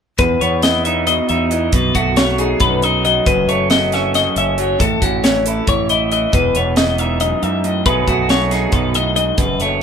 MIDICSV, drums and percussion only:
0, 0, Header, 1, 2, 480
1, 0, Start_track
1, 0, Key_signature, 4, "major"
1, 0, Tempo, 437956
1, 202, Time_signature, 7, 3, 24, 8
1, 10769, End_track
2, 0, Start_track
2, 0, Title_t, "Drums"
2, 201, Note_on_c, 9, 42, 79
2, 206, Note_on_c, 9, 36, 102
2, 310, Note_off_c, 9, 42, 0
2, 315, Note_off_c, 9, 36, 0
2, 452, Note_on_c, 9, 42, 60
2, 562, Note_off_c, 9, 42, 0
2, 684, Note_on_c, 9, 42, 76
2, 693, Note_on_c, 9, 38, 85
2, 794, Note_off_c, 9, 42, 0
2, 803, Note_off_c, 9, 38, 0
2, 932, Note_on_c, 9, 42, 55
2, 1041, Note_off_c, 9, 42, 0
2, 1170, Note_on_c, 9, 42, 73
2, 1280, Note_off_c, 9, 42, 0
2, 1410, Note_on_c, 9, 42, 49
2, 1519, Note_off_c, 9, 42, 0
2, 1654, Note_on_c, 9, 42, 55
2, 1763, Note_off_c, 9, 42, 0
2, 1890, Note_on_c, 9, 42, 82
2, 1894, Note_on_c, 9, 36, 96
2, 2000, Note_off_c, 9, 42, 0
2, 2003, Note_off_c, 9, 36, 0
2, 2135, Note_on_c, 9, 36, 67
2, 2136, Note_on_c, 9, 42, 56
2, 2245, Note_off_c, 9, 36, 0
2, 2245, Note_off_c, 9, 42, 0
2, 2373, Note_on_c, 9, 42, 73
2, 2381, Note_on_c, 9, 38, 95
2, 2482, Note_off_c, 9, 42, 0
2, 2491, Note_off_c, 9, 38, 0
2, 2614, Note_on_c, 9, 42, 57
2, 2723, Note_off_c, 9, 42, 0
2, 2847, Note_on_c, 9, 42, 73
2, 2854, Note_on_c, 9, 36, 92
2, 2956, Note_off_c, 9, 42, 0
2, 2964, Note_off_c, 9, 36, 0
2, 3095, Note_on_c, 9, 42, 48
2, 3205, Note_off_c, 9, 42, 0
2, 3340, Note_on_c, 9, 42, 49
2, 3450, Note_off_c, 9, 42, 0
2, 3578, Note_on_c, 9, 36, 95
2, 3578, Note_on_c, 9, 42, 77
2, 3687, Note_off_c, 9, 36, 0
2, 3688, Note_off_c, 9, 42, 0
2, 3821, Note_on_c, 9, 42, 57
2, 3931, Note_off_c, 9, 42, 0
2, 4055, Note_on_c, 9, 42, 64
2, 4063, Note_on_c, 9, 38, 94
2, 4164, Note_off_c, 9, 42, 0
2, 4173, Note_off_c, 9, 38, 0
2, 4299, Note_on_c, 9, 42, 55
2, 4308, Note_on_c, 9, 38, 30
2, 4409, Note_off_c, 9, 42, 0
2, 4418, Note_off_c, 9, 38, 0
2, 4541, Note_on_c, 9, 42, 70
2, 4550, Note_on_c, 9, 38, 31
2, 4651, Note_off_c, 9, 42, 0
2, 4659, Note_off_c, 9, 38, 0
2, 4781, Note_on_c, 9, 42, 55
2, 4891, Note_off_c, 9, 42, 0
2, 5019, Note_on_c, 9, 42, 49
2, 5129, Note_off_c, 9, 42, 0
2, 5261, Note_on_c, 9, 36, 101
2, 5263, Note_on_c, 9, 42, 79
2, 5370, Note_off_c, 9, 36, 0
2, 5372, Note_off_c, 9, 42, 0
2, 5500, Note_on_c, 9, 36, 72
2, 5503, Note_on_c, 9, 42, 60
2, 5610, Note_off_c, 9, 36, 0
2, 5612, Note_off_c, 9, 42, 0
2, 5740, Note_on_c, 9, 42, 72
2, 5749, Note_on_c, 9, 38, 93
2, 5849, Note_off_c, 9, 42, 0
2, 5858, Note_off_c, 9, 38, 0
2, 5981, Note_on_c, 9, 42, 65
2, 6091, Note_off_c, 9, 42, 0
2, 6217, Note_on_c, 9, 42, 71
2, 6220, Note_on_c, 9, 36, 86
2, 6327, Note_off_c, 9, 42, 0
2, 6330, Note_off_c, 9, 36, 0
2, 6459, Note_on_c, 9, 42, 58
2, 6568, Note_off_c, 9, 42, 0
2, 6702, Note_on_c, 9, 42, 49
2, 6812, Note_off_c, 9, 42, 0
2, 6939, Note_on_c, 9, 42, 69
2, 6940, Note_on_c, 9, 36, 105
2, 7049, Note_off_c, 9, 42, 0
2, 7050, Note_off_c, 9, 36, 0
2, 7176, Note_on_c, 9, 42, 55
2, 7285, Note_off_c, 9, 42, 0
2, 7411, Note_on_c, 9, 42, 69
2, 7420, Note_on_c, 9, 38, 92
2, 7521, Note_off_c, 9, 42, 0
2, 7529, Note_off_c, 9, 38, 0
2, 7654, Note_on_c, 9, 42, 49
2, 7764, Note_off_c, 9, 42, 0
2, 7892, Note_on_c, 9, 42, 70
2, 8001, Note_off_c, 9, 42, 0
2, 8140, Note_on_c, 9, 42, 47
2, 8249, Note_off_c, 9, 42, 0
2, 8374, Note_on_c, 9, 42, 52
2, 8484, Note_off_c, 9, 42, 0
2, 8611, Note_on_c, 9, 42, 77
2, 8612, Note_on_c, 9, 36, 105
2, 8721, Note_off_c, 9, 42, 0
2, 8722, Note_off_c, 9, 36, 0
2, 8851, Note_on_c, 9, 36, 74
2, 8851, Note_on_c, 9, 42, 59
2, 8960, Note_off_c, 9, 36, 0
2, 8961, Note_off_c, 9, 42, 0
2, 9088, Note_on_c, 9, 42, 69
2, 9097, Note_on_c, 9, 38, 87
2, 9198, Note_off_c, 9, 42, 0
2, 9207, Note_off_c, 9, 38, 0
2, 9329, Note_on_c, 9, 42, 60
2, 9338, Note_on_c, 9, 38, 30
2, 9439, Note_off_c, 9, 42, 0
2, 9447, Note_off_c, 9, 38, 0
2, 9558, Note_on_c, 9, 42, 71
2, 9563, Note_on_c, 9, 36, 88
2, 9667, Note_off_c, 9, 42, 0
2, 9673, Note_off_c, 9, 36, 0
2, 9802, Note_on_c, 9, 42, 54
2, 9912, Note_off_c, 9, 42, 0
2, 10043, Note_on_c, 9, 42, 55
2, 10153, Note_off_c, 9, 42, 0
2, 10277, Note_on_c, 9, 42, 82
2, 10280, Note_on_c, 9, 36, 99
2, 10387, Note_off_c, 9, 42, 0
2, 10390, Note_off_c, 9, 36, 0
2, 10519, Note_on_c, 9, 42, 53
2, 10628, Note_off_c, 9, 42, 0
2, 10769, End_track
0, 0, End_of_file